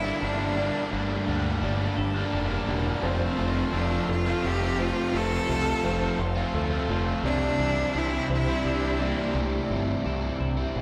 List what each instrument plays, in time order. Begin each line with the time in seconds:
Already playing: fingered electric bass G1, clean electric guitar G2 A#3 D4 A4, cello E4, ambient pad D5 G5 A5
0.03 overdriven electric guitar G3 A#3 D4
0.22 fingered electric bass G1, distorted electric guitar D3 G3 A#3 D4, clean electric guitar D4, cello D4
0.39 overdriven electric guitar G3 A#3 D4
0.57 overdriven electric guitar D3 G3 A#3 D4, felt piano D5
0.92 fingered electric bass G1, clean electric guitar G2, overdriven electric guitar G2 D3 G3 A#3 D4, cello A3
1.27 fingered electric bass D2, overdriven electric guitar D3 G3 A#3 D4
1.62 fingered electric bass G1, overdriven electric guitar G2 D3 G3 A#3 D4, clean electric guitar D4, felt piano D5
1.81 overdriven electric guitar G3 A#3 D4
1.96 fingered electric bass G1, clean electric guitar A4, muted distorted electric guitar stroke, muted overdriven electric guitar stroke
2.15 overdriven electric guitar G3 A#3 D4
2.32 fingered electric bass F1, distorted electric guitar D3 G3 A#3 D4, clean electric guitar D4
2.50 overdriven electric guitar G3 A#3 D4
2.67 fingered electric bass E1, overdriven electric guitar D3 G3 A#3 D4, clean electric guitar A#3
3.01 fingered electric bass F1, clean electric guitar F2, overdriven electric guitar F3 A3 C4 F4, felt piano C5, ambient pad C5 F5 C6
3.05 cello C4
3.37 fingered electric bass F1, overdriven electric guitar F3 A3 C4 F4, clean electric guitar A3
3.72 fingered electric bass F1, overdriven electric guitar F3 A3 C4 F4, clean electric guitar C4
3.77 cello D4
3.91 overdriven electric guitar A3 C4 F4
4.08 fingered electric bass F1, clean electric guitar F4, cello F4, felt piano A4, muted distorted electric guitar stroke, muted overdriven electric guitar stroke
4.26 overdriven electric guitar A3 C4 F4
4.42 fingered electric bass F1, distorted electric guitar F3 A3 C4 F4, clean electric guitar C4, cello G4
4.61 overdriven electric guitar A3 C4 F4
4.77 overdriven electric guitar F3 A3 C4 F4, clean electric guitar A3, cello F4, felt piano C5
5.12 fingered electric bass F1, clean electric guitar F2, overdriven electric guitar F3 A3 C4 F4
5.16 cello A4
5.47 fingered electric bass C2, overdriven electric guitar F3 A3 C4 F4, clean electric guitar A3
5.83 fingered electric bass F1, overdriven electric guitar F3 A3 C4 F4, clean electric guitar C4, felt piano C5
6.00 overdriven electric guitar A3 C4 F4
6.19 fingered electric bass F1, clean electric guitar F4, muted overdriven electric guitar stroke, muted distorted electric guitar stroke
6.35 overdriven electric guitar A3 C4 F4
6.54 fingered electric bass D2, distorted electric guitar F3 A3 C4 F4, clean electric guitar C4, felt piano A4
6.71 overdriven electric guitar A3 C4 F4
6.87 fingered electric bass F1, overdriven electric guitar F3 A3 C4 F4, clean electric guitar A3
7.23 fingered electric bass C2, overdriven electric guitar C3 E3 G3 C4 E4, clean electric guitar C3, cello D4, ambient pad G4 D5 E5, felt piano D5
7.57 fingered electric bass C2, overdriven electric guitar E3 G3 C4 E4, clean electric guitar G3
7.92 fingered electric bass C2, overdriven electric guitar C3 E3 G3 C4 E4, clean electric guitar D4
7.98 cello E4
8.11 overdriven electric guitar G3 C4 E4
8.28 fingered electric bass C2, clean electric guitar E4, felt piano C5, muted overdriven electric guitar stroke, muted distorted electric guitar stroke
8.34 cello E4
8.46 overdriven electric guitar G3 C4 E4
8.65 fingered electric bass C2, distorted electric guitar E3 G3 C4 E4, clean electric guitar D4, cello D4
8.82 overdriven electric guitar G3 C4 E4
8.99 overdriven electric guitar E3 G3 C4 E4, clean electric guitar G3, felt piano D5
9.03 cello A#3
9.33 fingered electric bass C2, overdriven electric guitar C3 E3 G3 C4 E4, clean electric guitar C3
9.39 cello A3
9.69 fingered electric bass G1, overdriven electric guitar E3 G3 C4 E4, clean electric guitar G3
10.05 fingered electric bass C2, overdriven electric guitar C3 E3 G3 C4 E4, clean electric guitar D4
10.22 overdriven electric guitar G3 C4 E4
10.40 fingered electric bass C2, clean electric guitar E4, muted overdriven electric guitar stroke
10.57 overdriven electric guitar G3 C4 E4
10.76 fingered electric bass A#1, clean electric guitar D4